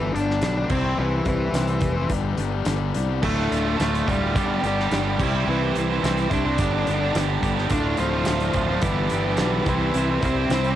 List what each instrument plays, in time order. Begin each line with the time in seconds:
Already playing: fingered electric bass G1, distorted electric guitar G2 D3, lead electric guitar E3 E4
0.01 distorted electric guitar G3 B3 D4 G4
0.14 fingered electric bass G1, distorted electric guitar G3 B3 D4 G4, lead electric guitar D4 D5, closed hi-hat
0.31 snare
0.41 fingered electric bass B1, distorted electric guitar G2 D3 G3 B3 D4 G4, snare, closed hi-hat
0.55 distorted electric guitar G3 B3 D4 G4
0.68 fingered electric bass C2, distorted electric guitar C3 G3 C4 E4 G4 C5, lead electric guitar C4 C5, kick, crash
0.82 distorted electric guitar C4 E4 G4 C5
0.96 fingered electric bass C2, distorted electric guitar C3 G3 C4 E4 G4 C5, lead electric guitar E3 E4
1.25 fingered electric bass C2, lead electric guitar E3 E4, kick, closed hi-hat
1.52 fingered electric bass C2, distorted electric guitar C3 G3 C4 E4 G4 C5, snare, closed hi-hat
1.67 distorted electric guitar C4 E4 G4 C5, closed hi-hat
1.80 fingered electric bass F1, muted distorted electric guitar stroke, kick, closed hi-hat
1.95 distorted electric guitar C4 E4 G4 C5
2.08 fingered electric bass G1, distorted electric guitar G2 D3 G3 B3 D4 G4, kick, closed hi-hat
2.22 distorted electric guitar G3 B3 D4 G4
2.36 fingered electric bass G1, distorted electric guitar G3 B3 D4 G4, closed hi-hat
2.65 fingered electric bass G1, distorted electric guitar G2 D3 G3 B3 D4 G4, snare, closed hi-hat
2.79 distorted electric guitar G3 B3 D4 G4
2.94 fingered electric bass C2, distorted electric guitar G3 B3 D4 G4, closed hi-hat
3.08 distorted electric guitar G3 B3 D4 G4
3.22 fingered electric bass D1, distorted electric guitar D2 A2 D3 A3 F4, lead electric guitar A3 A4, kick, crash
3.36 distorted electric guitar D3 A3 F4
3.50 fingered electric bass D1, distorted electric guitar A2 D3 A3 F4, closed hi-hat
3.62 distorted electric guitar D3 A3 F4
3.78 fingered electric bass D1, distorted electric guitar D2 A2 D3 A3 F4, lead electric guitar A3 A4, snare, closed hi-hat
3.92 distorted electric guitar D3 A3 F4, closed hi-hat
4.05 fingered electric bass D1, distorted electric guitar A2 D3 A3 F4, lead electric guitar G3 G4, muted distorted electric guitar stroke, kick, closed hi-hat
4.21 distorted electric guitar D3 A3 F4
4.35 fingered electric bass G1, distorted electric guitar G2 D3 G3 B3 D4 G4, kick, closed hi-hat
4.50 distorted electric guitar G3 B3 D4 G4
4.63 fingered electric bass G1, distorted electric guitar G3 B3 D4 G4, lead electric guitar G3 G4, closed hi-hat
4.78 distorted electric guitar G3 B3 D4 G4, snare
4.90 fingered electric bass G1, distorted electric guitar G2 D3 G3 B3 D4 G4, snare, closed hi-hat
5.03 distorted electric guitar G3 B3 D4 G4
5.18 fingered electric bass C2, distorted electric guitar C3 G3 C4 E4 G4 C5, kick, crash
5.32 distorted electric guitar C4 E4 G4 C5
5.46 fingered electric bass C2, distorted electric guitar C3 G3 C4 E4 G4 C5, lead electric guitar E3
5.50 lead electric guitar E4
5.62 distorted electric guitar C4 E4 G4 C5
5.75 fingered electric bass C2, distorted electric guitar C4 E4 G4, closed hi-hat
5.80 distorted electric guitar C5
5.89 distorted electric guitar C4 E4 G4 C5
6.01 fingered electric bass C2, distorted electric guitar C3 G3 C4 E4 G4 C5, closed hi-hat
6.05 snare
6.16 distorted electric guitar C4 E4 G4 C5, closed hi-hat
6.29 fingered electric bass C2, distorted electric guitar C4 E4 G4 C5, lead electric guitar D4 D5, muted distorted electric guitar stroke, kick, closed hi-hat
6.44 distorted electric guitar C4 E4 G4 C5
6.58 fingered electric bass G1, distorted electric guitar G2 D3 G3 B3 D4 G4, kick, closed hi-hat
6.72 distorted electric guitar G3 B3 D4 G4
6.86 fingered electric bass G1, distorted electric guitar G3 B3 D4 G4, closed hi-hat
7.00 distorted electric guitar G3 B3 D4 G4
7.14 fingered electric bass G1, distorted electric guitar G2 D3 G3 B3 D4 G4, snare, closed hi-hat
7.27 distorted electric guitar G3 B3 D4 G4
7.41 fingered electric bass G1, distorted electric guitar G3 B3 D4 G4, kick, closed hi-hat
7.55 distorted electric guitar G3 B3 D4 G4, snare
7.69 fingered electric bass D1, distorted electric guitar D2 A2 D3 A3 F4, lead electric guitar D4 D5, kick, closed hi-hat
7.82 distorted electric guitar D3 A3 F4
7.96 fingered electric bass D1, distorted electric guitar A2 D3 A3, lead electric guitar F3 F4, closed hi-hat
8.00 distorted electric guitar F4
8.10 distorted electric guitar D3 A3 F4
8.25 fingered electric bass D1, distorted electric guitar D2 A2 D3 A3 F4, snare, closed hi-hat
8.39 distorted electric guitar D3 A3 F4, closed hi-hat
8.53 fingered electric bass D1, distorted electric guitar A2 D3 A3, muted distorted electric guitar stroke, kick, closed hi-hat
8.57 distorted electric guitar F4
8.68 distorted electric guitar D3 A3 F4
8.81 fingered electric bass G1, distorted electric guitar G2 D3 G3 B3 D4 G4, lead electric guitar E3 E4, kick, closed hi-hat
8.96 distorted electric guitar G3 B3 D4 G4
9.09 fingered electric bass G1, distorted electric guitar G3 B3 D4 G4, closed hi-hat
9.25 distorted electric guitar B3 D4 G4
9.29 distorted electric guitar G3
9.37 fingered electric bass B1, distorted electric guitar G2 D3 G3 B3 D4 G4, snare, closed hi-hat
9.52 distorted electric guitar G3 B3 D4 G4
9.66 fingered electric bass C2, distorted electric guitar C3 G3 C4 E4 G4 C5, lead electric guitar E3 E4, kick, closed hi-hat
9.79 distorted electric guitar C4 E4 G4 C5
9.93 fingered electric bass C2, distorted electric guitar C3 G3 C4 E4 G4 C5, closed hi-hat
10.08 distorted electric guitar C4 E4 G4 C5
10.21 fingered electric bass C2, distorted electric guitar C4 E4 G4 C5, lead electric guitar C4 C5, kick, closed hi-hat
10.36 distorted electric guitar E4 G4 C5
10.40 distorted electric guitar C4
10.49 fingered electric bass C2, distorted electric guitar C3 G3 C4 E4 G4 C5, snare, closed hi-hat
10.63 distorted electric guitar C4 E4 G4 C5, closed hi-hat